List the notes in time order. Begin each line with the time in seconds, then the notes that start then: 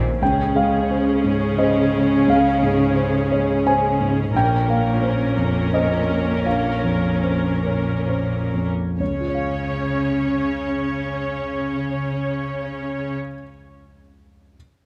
Already playing: A#1 G#2 A#2 D#3 A#3 D#4 C5 G#5
0.21 C#2 C#3 C#4 G#4 G5
0.56 G#3 F5
0.90 C#4 C5
1.24 G#2
1.58 C#4 C5 D#5
1.94 G#3
2.27 C#2 F5
2.63 G#2
2.96 C#4 C5
3.32 G#3 C#5
3.66 C#4 C5 G#5
4.01 G#2
4.34 A#1 A#2 C#4 A#4 G5
4.68 A#3 F5
5.02 C#4 C5
5.37 F2
5.73 C#4 C5 D#5
6.10 A#3
6.46 A#1 F5
6.84 F2
7.23 C#4 C5
7.65 A#3 C#5
8.07 C#4 C5
8.54 F2
8.99 C#2 C#3 C#4 C#5
9.07 C#3
9.13 G#3
9.21 F4
9.28 C#5
9.35 F5